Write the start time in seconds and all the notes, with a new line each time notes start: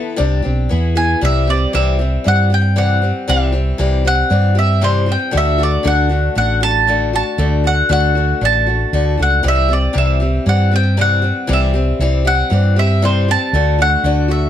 Already playing: E3 B3 E4 A4 E5 A5
0.16 C2 C3 G3 C4 D4 G4
0.42 B1 C4 D4 G4
0.69 E2 E3 B3 E4 G#4
0.95 E3 B3 E4 G#4 G#5
1.21 C2 C3 E3 G3 C4 G4 E5
1.47 G3 C4 G4 D5
1.73 C2 C3 E3 G3 C4 G4 E5
1.99 G3 C4 G4
2.24 G2 E3 G3 C4 G4 F#5
2.50 C4 G4
2.54 G5
2.76 C3 E3 G3 C4 G4 F#5
3.02 G3 C4 G4
3.28 C2 C3 E3 G3 C4 G4 E5
3.52 G3 C4 G4
3.78 C2 C3 E3 G3 C4 G4
4.05 G3 C4 G4 F#5
4.30 G2 E3 G3 C4 G4
4.55 G3 C4 G4 E5
4.81 C3 E3 G3 C4 G4 C5
5.06 G3 C4 G4
5.12 G5
5.31 D2 D3 A3 D4 F#4
5.37 E5
5.58 A3 D4 F#4
5.63 D5
5.83 D2 D3 A3 D4 F#4
5.87 F#5
6.09 A3 D4 F#4
6.35 A1 D3 A3 D4 F#4 F#5
6.61 A3 D4 F#4 A5
6.87 D3 A3 D4 F#4
7.13 A3 D4 F#4 A5
7.38 D2 D3 A3 D4 F#4
7.64 A3 D4 F#4 F#5
7.89 D2 D3 A3 D4 F#4 F#5
8.15 A3 D4 F#4
8.41 A1 D3 A3 D4 F#4 A5
8.67 A3 D4 F#4
8.93 D2 D3 A3 D4 F#4
9.17 C#2 A3 D4 F#4
9.23 F#5
9.43 C2 C3 E3 G3 C4 G4
9.48 E5
9.69 G3 C4 G4
9.73 D5
9.93 C2 C3 E3 G3 C4 G4
9.98 E5
10.20 G3 C4 G4
10.46 G2 E3 G3 C4 G4 F#5
10.71 G3 C4 G4
10.76 G5
10.97 C3 E3 G3 C4 G4
11.01 F#5
11.22 G3 C4 G4
11.47 C2 C3 E3 G3 C4 G4
11.53 E5
11.74 G3 C4 G4
11.99 C2 C3 E3 G3 C4 G4
12.25 G3 C4 G4 F#5
12.50 G2 E3 G3 C4 G4
12.76 G3 C4 G4 E5
13.02 C3 E3 G3 C4 G4 C5
13.28 G3 C4 G4 A5
13.53 D2 D3 A3 D4 F#4
13.79 A3 D4 F#4 F#5
14.04 D2 D3 A3 D4 F#4
14.28 A3 D4 F#4 E5